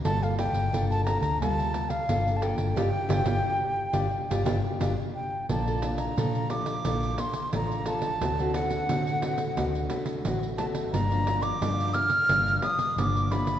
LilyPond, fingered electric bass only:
\new Staff \with { instrumentName = "Fingered electric bass" } { \clef bass \time 4/4 \key g \minor \tempo 4 = 88 g,,8. g,,16 g,,8. d,16 d,4 g,,8. g,,16 | g,,16 r16 g,,16 g,,16 r8. g,,16 r16 g,,16 g,,16 r16 g,,16 r8. | \key bes \major bes,,4 bes,4 bes,,8 r8 a,,4 | d,4 d4 d,8 r8 a,,4 |
g,,4 g,4 g,,8 r8 g,,4 | }